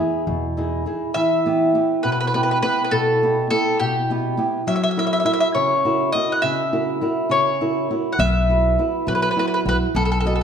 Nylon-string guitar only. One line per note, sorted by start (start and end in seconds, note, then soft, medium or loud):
0.00 0.44 B3 soft
0.00 0.45 E4 soft
0.00 0.45 G#4 medium
0.27 0.84 B2 medium
0.57 0.85 D#4 soft
0.57 0.85 E4 soft
0.57 0.86 G#4 medium
0.86 1.09 D#4 soft
0.86 1.09 E4 soft
0.86 1.10 G#4 medium
1.15 1.73 E3 medium
1.46 1.74 B3 medium
1.46 1.73 E4 soft
1.46 1.74 G4 medium
1.75 2.22 B3 medium
1.75 2.22 E4 soft
1.75 2.22 G4 soft
2.04 2.61 B2 medium
2.34 2.61 B3 medium
2.34 2.62 E4 soft
2.34 2.62 G4 medium
2.62 3.10 B3 soft
2.62 3.10 E4 medium
2.62 3.10 G4 medium
2.91 3.48 B2 medium
3.23 3.49 B3 soft
3.23 3.49 E4 soft
3.23 3.50 G4 soft
3.50 3.98 B3 soft
3.50 3.98 E4 soft
3.50 3.98 G4 medium
3.80 4.37 B2 medium
4.10 4.36 B3 soft
4.10 4.37 E4 soft
4.10 4.37 G4 medium
4.37 4.60 B3 medium
4.37 4.61 E4 soft
4.37 4.61 G4 medium
4.67 5.24 F#3 medium
4.97 5.24 E4 medium
4.97 5.24 F#4 soft
4.97 5.25 A#4 medium
5.25 5.72 E4 medium
5.25 5.73 F#4 soft
5.25 5.73 A#4 medium
5.55 6.12 C#3 medium
5.85 6.14 E4 medium
5.85 6.14 F#4 medium
5.85 6.14 A#4 medium
6.15 6.62 E4 medium
6.15 6.62 F#4 soft
6.15 6.62 A#4 medium
6.43 7.00 C#3 medium
6.73 7.00 E4 soft
6.73 7.01 F#4 soft
6.73 7.01 A#4 medium
7.01 7.49 E4 soft
7.01 7.49 F#4 soft
7.01 7.50 A#4 medium
7.29 7.87 C#3 medium
7.61 7.89 E4 soft
7.61 7.89 F#4 soft
7.61 7.90 A#4 soft
7.90 8.13 E4 medium
7.90 8.13 F#4 soft
7.90 8.13 A#4 medium
8.19 8.76 B3 medium
8.49 8.78 E4 soft
8.49 8.78 F#4 soft
8.49 8.78 B4 medium
8.79 9.26 E4 medium
8.79 9.26 F#4 soft
8.79 9.26 B4 medium
9.07 9.64 F#3 medium
9.36 9.64 E4 medium
9.36 9.64 F#4 soft
9.36 9.65 B4 medium
9.65 9.88 E4 soft
9.65 9.88 F#4 soft
9.65 9.89 B4 medium
9.95 10.43 B3 medium
10.25 10.43 F#4 soft
10.25 10.43 B4 soft
10.25 10.43 D#5 medium